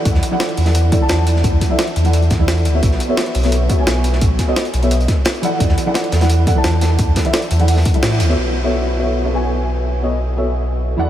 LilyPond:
<<
  \new Staff \with { instrumentName = "Felt piano" } { \time 4/4 \key e \major \tempo 4 = 173 <e e' a' d'' fis''>8. <e e' a' d'' fis''>4 <e e' a' d'' fis''>8. <e e' a' d'' fis''>16 <e e' a' d'' a''>4~ <e e' a' d'' a''>16~ | <e e' a' d'' a''>8. <e e' a' d'' e''>8 r8 <e e' a' d'' fis''>8 r8 <e e' a' d'' e''>4 <b fis' a' cis'' e''>16~ | <b fis' a' cis'' e''>8. <b fis' a' cis'' e''>4 <b fis' a' cis'' e''>8. <b fis' a' cis'' e''>16 <b fis' a' cis'' gis''>4~ <b fis' a' cis'' gis''>16~ | <b fis' a' cis'' gis''>8. <b fis' a' cis'' dis''>8 r8 <b fis' a' cis'' e''>8 r4 r16 <e e' a' d'' fis''>8~ |
<e e' a' d'' fis''>8. <e e' a' d'' fis''>4 <e e' a' d'' fis''>8. <e e' a' d'' fis''>16 <e e' a' d'' a''>4~ <e e' a' d'' a''>16~ | <e e' a' d'' a''>8. <e e' a' d'' e''>8 r8 <e e' a' d'' fis''>8 r8 <e e' a' d'' e''>4 <b fis' a' cis'' e''>16~ | <b fis' a' cis'' e''>8 r16 <b fis' a' cis'' e''>4 <b fis' a' cis'' e''>8. <b fis' a' cis'' e''>16 <b fis' a' cis'' gis''>4~ <b fis' a' cis'' gis''>16~ | <b fis' a' cis'' gis''>8. <b fis' a' cis'' dis''>8 r8 <b fis' a' cis'' e''>8 r4 r16 <e e' a' d'' fis''>8 | }
  \new Staff \with { instrumentName = "Sub bass" } { \clef bass \time 4/4 \key e \major e,8 r4 e,4 r8 e,4 | e,8 r4 e,4 e,4 d,8 | b,,8 r4 b,,4 r8 b,,4 | b,,8 r4 b,,4 r4. |
e,8 r4 e,4 r8 e,4 | e,8 r4 e,4 r8 a,8 d,8 | b,,1~ | b,,2.~ b,,8 e,8 | }
  \new DrumStaff \with { instrumentName = "Drums" } \drummode { \time 4/4 <hh bd>16 sn16 hh8 <hh sn>16 hh16 <hh hho>16 <hh sn>16 hh8 <hh bd>8 <hh sn>8 hh16 sn16 | <hh bd>8 <hh bd sn>8 <hh sn>16 hh16 hh16 hh16 hh16 hh16 <hh bd sn>8 <hh sn>16 hh16 hh8 | <hh bd>16 sn16 hh8 <hh sn>16 hh16 <hh hho>16 <hh sn>16 hh8 <hh bd>8 <hh sn>8 hh16 sn16 | <hh bd>8 <hh bd sn>8 <hh sn>16 hh16 hh16 hh16 hh16 hh16 <hh bd sn>8 <hh sn>16 hh16 hh8 |
<hh bd>16 sn16 hh8 <hh sn>16 hh16 <hh sn>16 <hh sn>16 hh8 <hh bd>8 <hh sn>8 <hh sn>8 | <hh bd>8 <hh bd sn>16 hh16 <hh sn>16 hh16 hh16 hh16 <hh hho>16 sn16 <hh bd>16 hh16 <hh sn>16 hh16 hh16 sn16 | r4 r4 r4 r4 | r4 r4 r4 r4 | }
>>